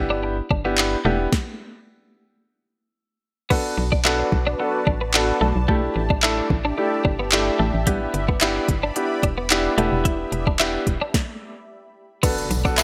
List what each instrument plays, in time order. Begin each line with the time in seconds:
Already playing: fm bass G1, grand piano B3 D4 E4 G4
0.10 clean electric guitar D4
0.23 muted clean electric guitar stroke
0.51 fm bass G1, clean electric guitar D4, kick
0.65 grand piano B3 D4 E4 G4, clean electric guitar B3
0.78 clap
1.05 fm bass E1, clean electric guitar A3, grand piano B3 D4 E4 G4
1.32 kick, snare
3.50 clean electric guitar B3, grand piano B3 D4 F#4 A4, analog synth pad F#4 B4 D5 A5, kick, crash
3.78 fm bass B1, muted clean electric guitar stroke
3.92 clean electric guitar D4, kick
4.05 grand piano B3 D4 F#4 A4, clean electric guitar E4, clap
4.19 muted clean electric guitar stroke
4.32 fm bass B1, kick
4.47 clean electric guitar D4
4.59 grand piano B3 D4 F#4 A4, muted clean electric guitar stroke
4.87 fm bass A1, clean electric guitar D4, kick
5.01 clean electric guitar B3
5.14 grand piano B3 D4 F#4 A4, clap
5.41 fm bass B1, clean electric guitar A3
5.56 fm bass B1
5.68 grand piano A3 D4 E4 G4, clean electric guitar A3, analog synth pad G4 D5 E5, kick
5.96 fm bass A1, muted clean electric guitar stroke
6.10 clean electric guitar D4, kick
6.23 grand piano A3 D4 E4 A4, clean electric guitar E4, clap
6.38 muted clean electric guitar stroke
6.50 fm bass A1, kick
6.65 clean electric guitar D4
6.78 grand piano A3 D4 E4 G4, muted clean electric guitar stroke
7.05 fm bass G1, clean electric guitar D4, kick
7.20 clean electric guitar B3
7.32 grand piano A3 D4 E4 G4, clap
7.59 fm bass A1, clean electric guitar A3
7.74 fm bass A1
7.87 clean electric guitar G3, grand piano B3 D4 E4 G4, analog synth pad D5 B5, kick, closed hi-hat
8.14 fm bass G1, muted clean electric guitar stroke, closed hi-hat
8.29 clean electric guitar B3, kick
8.41 grand piano B3 D4 E4 G4, clean electric guitar E4, clap, closed hi-hat
8.56 muted clean electric guitar stroke
8.68 fm bass G1, kick, closed hi-hat
8.83 clean electric guitar D4
8.96 grand piano B3 D4 E4 G4, muted clean electric guitar stroke, closed hi-hat
9.23 fm bass E1, clean electric guitar D4, kick, closed hi-hat
9.38 clean electric guitar B3
9.50 grand piano B3 D4 E4 G4, clap, closed hi-hat
9.78 fm bass E1, clean electric guitar A3, grand piano B3 D4 E4 G4, analog synth pad E5, closed hi-hat
9.92 fm bass E1
10.05 clean electric guitar E4, kick, closed hi-hat
10.32 fm bass E1, muted clean electric guitar stroke, closed hi-hat
10.47 clean electric guitar D4, kick
10.59 grand piano B3 D4 E4 G4, clean electric guitar E4, clap, closed hi-hat
10.74 muted clean electric guitar stroke
10.87 fm bass E1, kick, closed hi-hat
11.01 clean electric guitar D4
11.14 kick, snare
12.23 grand piano B3 D4 F#4 A4, clean electric guitar B3, analog synth pad A4 D5 F#5 B5, kick, closed hi-hat, crash, tambourine, impact
12.38 tambourine
12.51 fm bass B1, muted clean electric guitar stroke, closed hi-hat, tambourine
12.65 grand piano B3 D4 F#4 A4, clean electric guitar D4, kick, tambourine
12.78 clean electric guitar E4, clap, closed hi-hat, tambourine